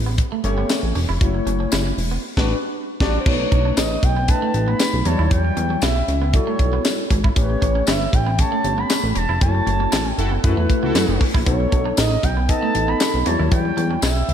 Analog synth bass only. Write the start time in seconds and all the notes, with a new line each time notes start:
Already playing: A1
0.44 G1
0.83 A1
0.95 E1
1.09 F1
1.21 F#1
1.46 F#1
1.72 F#1
1.98 E1
2.37 A1
3.00 A1
3.26 B1
3.52 B1
3.77 A1
4.03 B1
4.54 A1
4.93 B1
5.06 E2
5.19 D#2
5.31 E2
5.57 E2
5.82 B1
6.08 C#2
6.59 B1
7.10 G#1
7.36 A1
7.62 A1
7.88 G1
8.13 A1
8.64 G1
9.04 A1
9.16 E1
9.29 F1
9.41 F#1
9.67 F#1
9.93 A1
10.18 F#1
10.44 F#2
10.57 E2
10.83 C#2
10.95 F#2
11.09 F#1
11.34 A#1
11.46 B1
11.72 B1
11.98 A1
12.23 B1
12.75 A1
13.14 B1
13.26 E2
13.39 D#2
13.52 E2
13.77 E2
14.03 B1
14.29 C#2